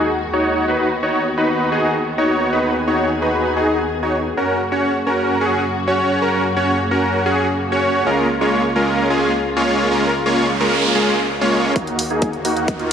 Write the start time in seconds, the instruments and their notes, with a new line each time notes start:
Already playing: string section D#2 D#3 G#3 F#4
0.33 supersaw synth D#4 F#4 C#5
0.68 string section D#3 B3, supersaw synth D#4 F#4 B4
1.03 supersaw synth D#4 F#4 C#5
1.37 supersaw synth D#4 F#4 B4
1.72 supersaw synth D#4 F#4 G#4
2.18 supersaw synth D#4 F#4 C#5
2.52 supersaw synth D#4 F#4 B4, string section G#4
2.87 supersaw synth D#4 F#4 C#5
3.22 supersaw synth D#4 F#4 B4
3.57 supersaw synth D#4 F#4 G#4
4.03 supersaw synth D#4 F#4 C#5
4.37 string section F#2 C#3 A#3 F#4, supersaw synth C#4 F#4 A#4
4.72 supersaw synth C#4 F#4 C#5
5.07 supersaw synth C#4 F#4 A#4
5.41 supersaw synth C#4 F#4 G#4
5.87 supersaw synth C#4 F#4 C#5
6.22 supersaw synth C#4 F#4 A#4
6.57 supersaw synth C#4 F#4 C#5
6.91 supersaw synth C#4 F#4 A#4
7.26 supersaw synth C#4 F#4 G#4
7.72 supersaw synth C#4 F#4 C#5
8.06 string section C#2 F4, supersaw synth G#3 A#3 C#4 F4 A#4
8.41 supersaw synth G#3 A#3 C#4 F4 C#5
8.76 supersaw synth G#3 A#3 C#4 F4 A#4
9.10 supersaw synth G#3 A#3 C#4 F4 G#4
9.56 supersaw synth G#3 A#3 C#4 F4 C#5
9.91 supersaw synth G#3 A#3 C#4 F4 A#4, string section G#3, noise sweep
10.26 supersaw synth G#3 A#3 C#4 F4 C#5
10.60 supersaw synth G#3 A#3 C#4 F4 A#4
10.95 supersaw synth G#3 A#3 C#4 F4 G#4
11.41 supersaw synth G#3 A#3 C#4 F4 C#5
11.76 string section D#2 D#3 A#3 F#4, supersaw synth F#4, kick, closed hi-hat, riser
11.87 closed hi-hat
11.99 open hi-hat
12.10 supersaw synth A#3 D#4 G#4, closed hi-hat
12.22 kick, closed hi-hat
12.33 closed hi-hat
12.45 supersaw synth A#3 D#4 F#4, open hi-hat
12.57 closed hi-hat
12.68 kick, closed hi-hat
12.80 supersaw synth A#3 D#4 F4, closed hi-hat